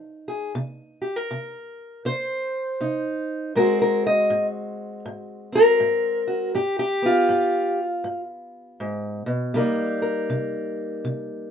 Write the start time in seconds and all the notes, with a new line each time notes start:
Already playing: F3 D#4
0.28 G#4
0.55 C3
1.02 G4
1.16 A#4
1.31 C3
2.05 C3 C5
2.81 C3 D#4
3.55 G#2 G#3 C4 F#4 A#4
3.82 A#4
4.07 D#5
4.30 G#2
5.06 G#2
5.52 C4 A#4
5.80 G#2
6.27 F#4
6.55 G2 G4
6.79 G4
7.02 B3 F4
7.29 G2
8.04 G2
8.80 G#2
9.26 B2
9.54 C3 G3 A#3 D#4 A#4
10.02 A#4
10.30 C3
11.05 C3